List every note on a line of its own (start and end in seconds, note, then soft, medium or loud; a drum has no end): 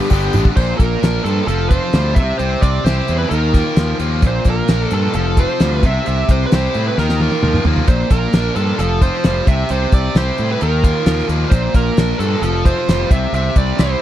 0.00 0.11 G2 medium
0.00 0.10 G3 medium
0.00 0.11 G3 medium
0.00 0.11 B3 medium
0.00 0.12 B3 medium
0.00 0.12 D4 medium
0.00 0.11 G4 medium
0.00 tambourine soft
0.10 0.28 G1 medium
0.10 0.56 G2 medium
0.10 0.55 D3 medium
0.10 0.56 D3 medium
0.10 0.35 G3 medium
0.10 0.36 G3 loud
0.10 0.34 B3 medium
0.10 0.35 B3 loud
0.10 0.32 D4 medium
0.10 0.33 D4 loud
0.10 0.45 G4 medium
0.10 kick medium
0.10 tambourine medium
0.22 tambourine soft
0.33 0.51 A1 medium
0.33 0.57 G3 medium
0.33 0.57 B3 medium
0.33 0.56 D4 medium
0.33 mid tom medium
0.33 tambourine medium
0.37 0.58 G3 medium
0.45 kick medium
0.56 0.72 A#1 medium
0.56 1.48 A#2 medium
0.56 1.49 A#2 medium
0.56 0.77 C5 medium
0.56 kick medium
0.56 crash medium
0.78 0.95 A#1 medium
0.78 1.49 A#3 medium
0.78 1.22 A#4 medium
0.78 kick medium
0.78 closed hi-hat medium
1.03 1.18 A#1 medium
1.03 1.49 D4 medium
1.03 1.49 A#4 medium
1.03 snare medium
1.03 closed hi-hat medium
1.24 1.40 G2 medium
1.24 1.47 F3 medium
1.24 1.49 D4 medium
1.24 1.46 A4 medium
1.24 closed hi-hat medium
1.47 1.78 F1 medium
1.47 2.16 F3 medium
1.47 1.69 A4 medium
1.47 closed hi-hat medium
1.69 2.17 C4 medium
1.69 2.18 F4 medium
1.69 2.18 C5 medium
1.69 kick medium
1.69 closed hi-hat medium
1.93 2.18 D2 medium
1.93 2.17 G3 medium
1.93 2.17 F4 medium
1.93 snare loud
1.93 closed hi-hat medium
2.15 2.31 C2 medium
2.15 2.38 C3 medium
2.15 2.37 E5 medium
2.15 kick loud
2.15 closed hi-hat medium
2.37 2.55 C2 medium
2.37 3.31 C3 medium
2.37 2.63 C5 loud
2.37 closed hi-hat medium
2.61 2.78 C2 medium
2.61 3.31 C4 medium
2.61 2.84 D5 medium
2.61 kick medium
2.61 closed hi-hat medium
2.84 3.00 C2 medium
2.84 3.32 E4 medium
2.84 3.31 G4 medium
2.84 3.18 C5 medium
2.84 snare loud
2.84 closed hi-hat medium
3.08 3.24 E2 medium
3.08 3.32 G3 medium
3.08 3.32 E4 medium
3.08 closed hi-hat medium
3.18 3.30 B4 medium
3.30 3.61 D#2 medium
3.30 4.23 D#3 medium
3.30 4.24 D#3 medium
3.30 3.96 A#4 medium
3.30 closed hi-hat medium
3.54 4.23 A#3 medium
3.54 4.23 F4 medium
3.54 kick medium
3.54 snare soft
3.54 closed hi-hat medium
3.76 3.92 D#2 medium
3.76 4.23 F3 medium
3.76 4.23 F4 medium
3.76 snare loud
3.76 closed hi-hat medium
3.99 4.24 D#2 medium
3.99 4.23 F3 medium
3.99 4.23 A#3 medium
3.99 closed hi-hat medium
4.22 4.38 A#1 medium
4.22 5.14 A#2 medium
4.22 5.15 A#2 medium
4.22 kick loud
4.22 closed hi-hat medium
4.27 4.49 C5 medium
4.45 4.61 A#1 medium
4.45 5.14 A#3 medium
4.45 kick medium
4.45 closed hi-hat medium
4.50 4.94 A#4 medium
4.68 4.84 A#1 medium
4.68 5.14 D4 medium
4.68 5.15 A#4 medium
4.68 snare loud
4.68 closed hi-hat medium
4.91 5.07 G2 medium
4.91 5.14 F3 medium
4.91 5.15 D4 medium
4.91 5.14 A4 medium
4.91 closed hi-hat medium
5.14 5.44 F1 medium
5.14 5.82 F3 medium
5.14 5.84 F3 medium
5.14 5.39 A4 medium
5.14 closed hi-hat medium
5.37 5.83 C4 medium
5.37 5.84 F4 medium
5.37 5.75 C5 loud
5.37 kick medium
5.37 closed hi-hat medium
5.60 5.85 D2 medium
5.60 5.84 G3 medium
5.60 5.84 F4 medium
5.60 snare loud
5.60 closed hi-hat medium
5.75 5.86 B4 loud
5.83 5.98 C2 medium
5.83 6.04 C3 medium
5.83 6.06 C3 medium
5.83 6.06 E5 medium
5.83 kick medium
5.83 closed hi-hat medium
6.05 6.22 C2 medium
6.05 6.97 C3 medium
6.05 6.98 C3 medium
6.05 6.30 E5 loud
6.05 closed hi-hat medium
6.29 6.44 C2 medium
6.29 6.97 C4 medium
6.29 6.44 C5 medium
6.29 kick medium
6.29 closed hi-hat medium
6.46 6.53 B4 medium
6.52 6.67 C2 medium
6.52 6.98 E4 medium
6.52 6.98 G4 medium
6.52 6.87 C5 medium
6.52 snare loud
6.52 closed hi-hat medium
6.74 6.90 A2 medium
6.74 6.97 G3 medium
6.74 6.98 E4 medium
6.74 closed hi-hat medium
6.87 6.98 B4 medium
6.98 7.27 D#2 medium
6.98 7.89 D#3 medium
6.98 7.63 A#4 medium
6.98 snare soft
7.09 snare soft
7.20 7.88 A#3 medium
7.20 7.89 F4 medium
7.20 high tom medium
7.31 high tom medium
7.43 7.58 D#2 medium
7.43 7.88 F3 medium
7.43 7.89 F4 medium
7.43 mid tom medium
7.54 mid tom medium
7.65 7.80 D#2 medium
7.65 7.88 F3 medium
7.65 7.89 A#3 medium
7.65 floor tom medium
7.76 floor tom medium
7.88 8.03 A#1 medium
7.88 8.79 A#2 medium
7.88 8.80 A#2 medium
7.88 8.10 C5 medium
7.88 kick loud
7.88 closed hi-hat medium
8.10 8.26 A#1 medium
8.10 8.79 A#3 medium
8.10 8.54 A#4 medium
8.10 kick medium
8.10 closed hi-hat medium
8.33 8.49 A#1 medium
8.33 8.79 D4 medium
8.33 8.80 A#4 medium
8.33 snare loud
8.33 closed hi-hat medium
8.56 8.71 G2 medium
8.56 8.79 F3 medium
8.56 8.80 D4 medium
8.56 8.79 A4 medium
8.56 closed hi-hat medium
8.79 9.09 F1 medium
8.79 9.48 F3 medium
8.79 9.47 F3 medium
8.79 9.02 A4 medium
8.79 closed hi-hat medium
9.02 9.48 C4 medium
9.02 9.48 F4 medium
9.02 9.49 C5 medium
9.02 kick medium
9.02 closed hi-hat medium
9.24 9.40 F1 medium
9.24 9.48 G3 medium
9.24 9.48 F4 medium
9.24 snare loud
9.24 closed hi-hat medium
9.47 9.62 C2 medium
9.47 9.70 C3 medium
9.47 9.71 C3 medium
9.47 9.69 E5 loud
9.47 kick medium
9.47 closed hi-hat medium
9.69 9.85 C2 medium
9.69 10.61 C3 medium
9.69 10.60 C3 medium
9.69 9.92 C5 loud
9.69 closed hi-hat medium
9.92 10.08 C2 medium
9.92 10.62 C4 medium
9.92 10.17 D5 medium
9.92 kick medium
9.92 closed hi-hat medium
10.15 10.30 C2 medium
10.15 10.62 E4 medium
10.15 10.62 G4 medium
10.15 10.51 C5 medium
10.15 snare loud
10.15 closed hi-hat medium
10.38 10.54 A2 medium
10.38 10.62 G3 medium
10.38 10.62 E4 medium
10.38 closed hi-hat medium
10.52 10.62 B4 medium
10.60 10.91 D#2 medium
10.60 11.52 D#3 medium
10.60 11.53 D#3 medium
10.60 11.26 A#4 medium
10.60 closed hi-hat medium
10.84 11.52 A#3 medium
10.84 11.52 F4 medium
10.84 kick medium
10.84 closed hi-hat medium
11.06 11.21 D#2 medium
11.06 11.52 F3 medium
11.06 11.52 F4 medium
11.06 snare loud
11.06 closed hi-hat medium
11.19 snare soft
11.29 11.44 D#2 medium
11.29 11.52 F3 medium
11.29 11.52 A#3 medium
11.29 closed hi-hat medium
11.50 11.67 A#1 medium
11.50 12.43 A#2 medium
11.50 11.75 C5 medium
11.50 kick loud
11.50 closed hi-hat medium
11.74 11.89 A#1 medium
11.74 12.43 A#3 medium
11.74 12.19 A#4 medium
11.74 kick medium
11.74 closed hi-hat medium
11.97 12.12 A#1 medium
11.97 12.43 D4 medium
11.97 12.44 A#4 medium
11.97 snare loud
11.97 closed hi-hat medium
12.19 12.35 G2 medium
12.19 12.42 F3 medium
12.19 12.43 D4 medium
12.19 12.41 A4 medium
12.19 closed hi-hat medium
12.42 12.72 F1 medium
12.42 13.11 F3 medium
12.42 12.64 A4 medium
12.42 closed hi-hat medium
12.65 13.11 C4 medium
12.65 13.11 F4 medium
12.65 13.08 C5 medium
12.65 kick medium
12.65 closed hi-hat medium
12.88 13.03 F1 medium
12.88 13.11 G3 medium
12.88 13.11 F4 medium
12.88 snare loud
12.88 closed hi-hat medium
13.10 13.25 C2 medium
13.10 13.34 C3 medium
13.10 13.33 C3 medium
13.10 13.33 E5 medium
13.10 kick loud
13.10 closed hi-hat medium
13.32 13.48 C2 medium
13.32 14.02 C3 medium
13.32 13.55 E5 loud
13.32 closed hi-hat medium
13.56 13.71 C2 medium
13.56 14.02 G3 medium
13.56 13.81 D5 medium
13.56 kick medium
13.56 closed hi-hat medium
13.79 13.94 C2 medium
13.79 14.02 C4 medium
13.79 14.02 E4 medium
13.79 14.02 C5 medium
13.79 snare loud
13.79 closed hi-hat medium